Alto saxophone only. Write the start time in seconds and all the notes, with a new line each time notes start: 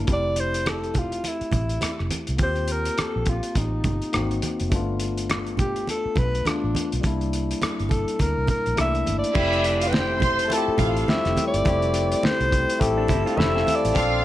0.13 D5
0.40 C5
0.69 A4
0.99 F4
1.28 E4
2.43 C5
2.72 A#4
3.01 A4
3.29 F4
3.58 D#4
5.60 G4
5.90 A4
6.18 B4
6.47 D4
7.90 A4
8.21 A#4
8.50 A#4
8.81 E5
9.19 D5
9.88 B4
9.94 C5
10.53 A4
11.10 E5
11.47 D5
12.25 C5
12.81 A4
13.38 E5
13.76 D5